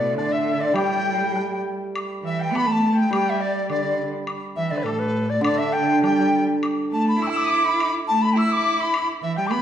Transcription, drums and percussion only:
0.18 low woodblock soft
0.76 high woodblock medium
1.36 low woodblock soft
1.96 high woodblock medium
2.55 high woodblock medium
3.13 high woodblock medium
3.70 high woodblock soft
4.27 high woodblock medium
4.86 high woodblock soft
5.44 high woodblock medium
6.04 high woodblock soft
6.04 low woodblock soft
6.63 high woodblock medium
7.22 high woodblock soft
7.80 high woodblock medium
8.37 high woodblock soft
8.94 high woodblock medium
9.51 high woodblock medium

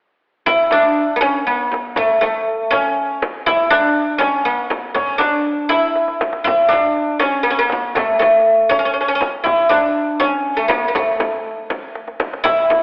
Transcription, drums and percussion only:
0.47 tombak dum medium
0.47 frame drum medium
0.71 tombak tek medium
0.71 frame drum medium
1.21 tombak tek medium
1.21 frame drum medium
1.48 tombak ka soft
1.61 tombak ka soft
1.72 tombak tek medium
1.72 frame drum medium
1.96 frame drum medium
1.96 tombak dum medium
2.21 tombak tek medium
2.21 frame drum medium
2.72 tombak tek medium
2.72 frame drum medium
2.97 tombak ka soft
3.11 tombak ka soft
3.22 tombak tek medium
3.22 frame drum medium
3.47 tombak dum medium
3.47 frame drum medium
3.71 tombak tek medium
3.71 frame drum medium
4.20 tombak tek medium
4.20 frame drum medium
4.47 tombak ka soft
4.60 tombak ka soft
4.70 tombak tek medium
4.70 frame drum medium
4.96 frame drum medium
4.96 tombak dum medium
5.08 tombak ka soft
5.20 tombak tek medium
5.20 frame drum medium
5.45 tombak ka soft
5.70 tombak tek medium
5.70 frame drum medium
5.82 tombak ka soft
5.95 tombak tek soft
6.08 tombak ka medium
6.21 tombak tek medium
6.21 frame drum medium
6.32 tombak ka medium
6.45 tombak dum medium
6.45 frame drum medium
6.70 tombak tek medium
6.70 frame drum medium
7.21 tombak tek medium
7.21 frame drum medium
7.46 tombak ka soft
7.58 tombak ka soft
7.70 tombak tek medium
7.70 frame drum medium
7.95 tombak dum medium
7.95 frame drum medium
8.20 tombak tek medium
8.20 frame drum medium
8.71 tombak tek medium
8.71 frame drum medium
8.97 tombak ka soft
9.09 tombak ka soft
9.21 tombak tek medium
9.21 frame drum medium
9.46 frame drum medium
9.46 tombak dum medium
9.70 tombak tek medium
9.70 frame drum medium
10.20 tombak tek medium
10.20 frame drum medium
10.47 tombak ka soft
10.59 tombak ka soft
10.70 tombak tek medium
10.70 frame drum medium
10.95 frame drum medium
10.95 tombak dum medium
11.08 tombak ka soft
11.20 tombak tek medium
11.20 frame drum medium
11.46 tombak ka soft
11.70 tombak tek medium
11.70 frame drum medium
11.83 tombak ka soft
11.95 tombak tek soft
12.07 tombak ka medium
12.20 tombak tek medium
12.20 frame drum medium
12.33 tombak ka medium
12.45 frame drum medium
12.45 tombak dum medium
12.70 tombak tek medium
12.70 frame drum medium

